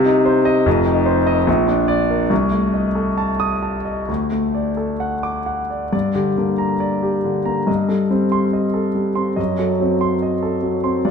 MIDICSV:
0, 0, Header, 1, 2, 480
1, 0, Start_track
1, 0, Key_signature, -2, "minor"
1, 0, Tempo, 815217
1, 388, Time_signature, 2, 2, 24, 8
1, 1354, Tempo, 874636
1, 1834, Tempo, 918836
1, 3274, Tempo, 881057
1, 3754, Tempo, 864553
1, 4714, Tempo, 839161
1, 6181, End_track
2, 0, Start_track
2, 0, Title_t, "Grand piano"
2, 0, Program_c, 0, 0
2, 0, Note_on_c, 0, 48, 82
2, 12, Control_c, 0, 64, 127
2, 34, Note_on_c, 0, 63, 59
2, 150, Note_on_c, 0, 72, 63
2, 222, Note_off_c, 0, 63, 0
2, 266, Note_on_c, 0, 75, 78
2, 340, Note_off_c, 0, 72, 0
2, 371, Note_off_c, 0, 48, 0
2, 385, Note_on_c, 0, 29, 68
2, 387, Note_off_c, 0, 75, 0
2, 390, Note_on_c, 0, 41, 77
2, 399, Control_c, 0, 64, 0
2, 477, Control_c, 0, 64, 127
2, 506, Note_on_c, 0, 63, 53
2, 623, Note_on_c, 0, 72, 58
2, 697, Note_off_c, 0, 63, 0
2, 745, Note_on_c, 0, 75, 74
2, 816, Note_off_c, 0, 72, 0
2, 849, Note_off_c, 0, 29, 0
2, 852, Note_off_c, 0, 41, 0
2, 864, Note_on_c, 0, 34, 77
2, 865, Note_off_c, 0, 75, 0
2, 874, Control_c, 0, 64, 0
2, 977, Control_c, 0, 64, 127
2, 988, Note_on_c, 0, 62, 53
2, 1107, Note_on_c, 0, 74, 75
2, 1182, Note_off_c, 0, 62, 0
2, 1238, Note_on_c, 0, 70, 50
2, 1305, Note_off_c, 0, 74, 0
2, 1340, Note_off_c, 0, 34, 0
2, 1355, Note_on_c, 0, 36, 68
2, 1359, Note_off_c, 0, 70, 0
2, 1366, Control_c, 0, 64, 0
2, 1448, Control_c, 0, 64, 127
2, 1473, Note_on_c, 0, 57, 47
2, 1594, Note_on_c, 0, 75, 47
2, 1665, Note_off_c, 0, 57, 0
2, 1713, Note_on_c, 0, 69, 53
2, 1787, Note_off_c, 0, 75, 0
2, 1835, Note_on_c, 0, 81, 59
2, 1905, Note_off_c, 0, 69, 0
2, 1950, Note_on_c, 0, 87, 65
2, 2023, Note_off_c, 0, 81, 0
2, 2070, Note_on_c, 0, 81, 46
2, 2141, Note_off_c, 0, 87, 0
2, 2188, Note_on_c, 0, 75, 49
2, 2262, Note_off_c, 0, 81, 0
2, 2290, Note_off_c, 0, 36, 0
2, 2309, Note_on_c, 0, 38, 55
2, 2310, Note_off_c, 0, 75, 0
2, 2320, Control_c, 0, 64, 0
2, 2411, Control_c, 0, 64, 127
2, 2431, Note_on_c, 0, 57, 43
2, 2551, Note_on_c, 0, 74, 43
2, 2625, Note_off_c, 0, 57, 0
2, 2668, Note_on_c, 0, 69, 45
2, 2744, Note_off_c, 0, 74, 0
2, 2788, Note_on_c, 0, 78, 53
2, 2863, Note_off_c, 0, 69, 0
2, 2909, Note_on_c, 0, 86, 56
2, 2984, Note_off_c, 0, 78, 0
2, 3029, Note_on_c, 0, 78, 49
2, 3107, Note_off_c, 0, 86, 0
2, 3155, Note_on_c, 0, 74, 40
2, 3226, Note_off_c, 0, 78, 0
2, 3254, Note_off_c, 0, 38, 0
2, 3263, Note_off_c, 0, 74, 0
2, 3271, Note_on_c, 0, 43, 54
2, 3271, Note_on_c, 0, 74, 51
2, 3286, Control_c, 0, 64, 0
2, 3366, Control_c, 0, 64, 127
2, 3393, Note_on_c, 0, 50, 42
2, 3393, Note_on_c, 0, 67, 46
2, 3466, Note_off_c, 0, 74, 0
2, 3509, Note_off_c, 0, 50, 0
2, 3516, Note_on_c, 0, 58, 44
2, 3517, Note_on_c, 0, 50, 39
2, 3586, Note_off_c, 0, 67, 0
2, 3630, Note_on_c, 0, 82, 51
2, 3708, Note_off_c, 0, 50, 0
2, 3708, Note_off_c, 0, 58, 0
2, 3748, Note_on_c, 0, 74, 46
2, 3825, Note_off_c, 0, 82, 0
2, 3873, Note_on_c, 0, 67, 45
2, 3946, Note_off_c, 0, 74, 0
2, 3994, Note_on_c, 0, 50, 41
2, 4068, Note_off_c, 0, 67, 0
2, 4111, Note_on_c, 0, 82, 42
2, 4112, Note_on_c, 0, 58, 39
2, 4188, Note_off_c, 0, 50, 0
2, 4213, Note_off_c, 0, 43, 0
2, 4230, Note_on_c, 0, 43, 54
2, 4232, Note_on_c, 0, 75, 45
2, 4234, Note_off_c, 0, 82, 0
2, 4235, Note_off_c, 0, 58, 0
2, 4248, Control_c, 0, 64, 0
2, 4344, Control_c, 0, 64, 127
2, 4349, Note_on_c, 0, 69, 41
2, 4350, Note_on_c, 0, 55, 36
2, 4426, Note_off_c, 0, 75, 0
2, 4464, Note_off_c, 0, 55, 0
2, 4473, Note_on_c, 0, 55, 44
2, 4473, Note_on_c, 0, 60, 43
2, 4545, Note_off_c, 0, 69, 0
2, 4590, Note_on_c, 0, 84, 54
2, 4666, Note_off_c, 0, 55, 0
2, 4666, Note_off_c, 0, 60, 0
2, 4709, Note_on_c, 0, 75, 43
2, 4785, Note_off_c, 0, 84, 0
2, 4826, Note_on_c, 0, 69, 44
2, 4906, Note_off_c, 0, 75, 0
2, 4947, Note_on_c, 0, 55, 41
2, 5023, Note_off_c, 0, 69, 0
2, 5065, Note_on_c, 0, 60, 38
2, 5065, Note_on_c, 0, 84, 46
2, 5144, Note_off_c, 0, 55, 0
2, 5170, Note_off_c, 0, 43, 0
2, 5184, Note_on_c, 0, 75, 50
2, 5187, Note_on_c, 0, 42, 50
2, 5191, Note_off_c, 0, 60, 0
2, 5191, Note_off_c, 0, 84, 0
2, 5206, Control_c, 0, 64, 0
2, 5287, Control_c, 0, 64, 127
2, 5311, Note_on_c, 0, 54, 39
2, 5313, Note_on_c, 0, 69, 44
2, 5383, Note_off_c, 0, 75, 0
2, 5426, Note_off_c, 0, 54, 0
2, 5435, Note_on_c, 0, 54, 41
2, 5436, Note_on_c, 0, 60, 39
2, 5507, Note_off_c, 0, 69, 0
2, 5554, Note_on_c, 0, 84, 56
2, 5627, Note_off_c, 0, 54, 0
2, 5628, Note_off_c, 0, 60, 0
2, 5676, Note_on_c, 0, 75, 43
2, 5746, Note_off_c, 0, 84, 0
2, 5792, Note_on_c, 0, 69, 43
2, 5867, Note_off_c, 0, 75, 0
2, 5908, Note_on_c, 0, 54, 42
2, 5986, Note_off_c, 0, 69, 0
2, 6028, Note_on_c, 0, 84, 44
2, 6029, Note_on_c, 0, 60, 39
2, 6104, Note_off_c, 0, 54, 0
2, 6128, Note_off_c, 0, 42, 0
2, 6148, Note_on_c, 0, 74, 50
2, 6149, Note_on_c, 0, 43, 57
2, 6152, Note_off_c, 0, 60, 0
2, 6152, Note_off_c, 0, 84, 0
2, 6167, Control_c, 0, 64, 0
2, 6181, Note_off_c, 0, 43, 0
2, 6181, Note_off_c, 0, 74, 0
2, 6181, End_track
0, 0, End_of_file